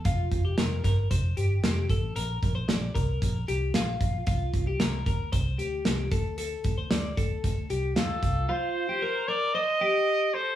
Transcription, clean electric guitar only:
0.06 F4
0.45 G4
0.58 A#4
0.84 A#4
1.11 C5
1.37 G4
1.90 A4
2.16 A#4
2.55 C5
2.68 D5
2.95 A#4
3.48 G4
3.75 F4
4.27 F4
4.67 G4
4.80 A#4
5.06 A#4
5.32 C5
5.58 G4
6.12 A4
6.38 A4
6.78 C5
6.91 D5
7.17 A4
7.70 G4
7.96 F4
8.49 F4
8.89 G4
9.02 A#4
9.28 A#4
9.55 C5
9.81 G4
10.34 A4

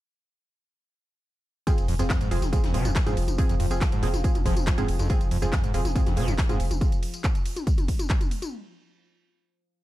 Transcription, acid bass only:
1.67 F2
1.88 F2
1.99 F2
2.10 F2
2.21 G#2
2.31 F2
2.53 F2
2.64 F2
2.74 C3
2.85 D#2
2.96 D#2
3.06 G#2
3.49 F2
3.60 F2
3.81 D#2
3.92 G#2
4.03 C3
4.46 F3
4.67 F2
4.78 G#2
4.99 F2
5.10 F2
5.31 F2
5.42 F2
5.53 F2
5.64 G#2
5.74 F2
5.96 F2
6.06 F2
6.17 C3
6.28 D#2
6.38 D#2
6.49 G#2

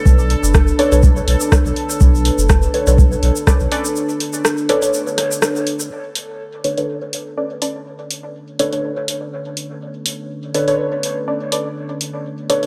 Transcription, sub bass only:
0.06 B1
0.43 F#1
0.92 B1
1.28 B1
1.65 B1
2.01 B1
2.39 F#1
2.87 B1
3.23 B1
3.61 B1

